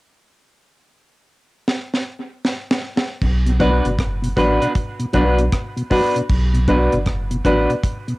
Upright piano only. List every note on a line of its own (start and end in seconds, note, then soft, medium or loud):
3.60 3.86 D4 medium
3.60 3.86 F#4 medium
3.60 3.86 B4 medium
3.60 3.87 D5 medium
4.37 4.63 D4 medium
4.37 4.63 F#4 medium
4.37 4.63 B4 medium
4.37 4.64 D5 medium
5.14 5.40 D4 medium
5.14 5.40 F#4 medium
5.14 5.40 B4 medium
5.14 5.41 D5 medium
5.90 6.17 D4 medium
5.90 6.17 F#4 medium
5.90 6.17 B4 medium
5.90 6.17 D5 loud
6.68 6.94 D4 medium
6.68 6.94 F#4 medium
6.68 6.94 B4 medium
6.68 6.95 D5 medium
7.45 7.71 D4 medium
7.45 7.71 F#4 medium
7.45 7.71 B4 medium
7.45 7.71 D5 medium